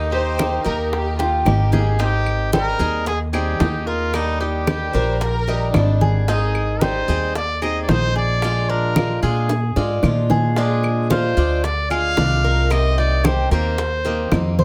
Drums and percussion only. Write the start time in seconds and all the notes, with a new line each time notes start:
0.13 high bongo, high conga
0.39 high bongo, high conga, claves
0.66 high bongo, high conga
0.93 high bongo, high conga
1.20 high bongo, high conga
1.46 low bongo, high conga, claves
1.73 low bongo, high conga
2.00 high bongo, high conga
2.26 high bongo, high conga, claves
2.53 high bongo, high conga
2.80 high conga
3.07 high bongo, high conga
3.34 high bongo, high conga, claves
3.60 high bongo, low bongo, high conga
3.87 high bongo, high conga
4.14 high bongo, high conga, claves
4.41 high conga
4.67 high bongo, high conga, claves
4.94 high bongo, high conga
5.21 high bongo, high conga
5.48 high bongo, high conga
5.74 high bongo, low bongo, high conga, claves
6.01 high bongo, high conga
6.28 high bongo, high conga
6.55 high bongo, high conga, claves
6.81 high bongo, high conga
7.08 high conga
7.35 high bongo, high conga
7.62 high bongo, high conga, claves
7.89 high bongo, low bongo, high conga
8.16 high bongo, high conga
8.42 high bongo, high conga, claves
8.69 high conga
8.96 high bongo, high conga, claves
9.23 high bongo, high conga
9.49 high bongo, high conga
9.76 high bongo, high conga
10.03 low bongo, high conga, claves
10.30 low bongo, high conga
10.56 high bongo, high conga
10.83 high bongo, high conga, claves
11.10 high bongo, high conga
11.37 high conga
11.64 high bongo, high conga
11.91 high bongo, high conga, claves
12.17 high bongo, low bongo, high conga
12.44 high bongo, high conga
12.71 high bongo, high conga, claves
12.98 high conga
13.24 high bongo, high conga, claves
13.51 high bongo, high conga
13.78 high bongo, high conga
14.05 high bongo, high conga
14.32 high bongo, low bongo, high conga, claves
14.59 high bongo, high conga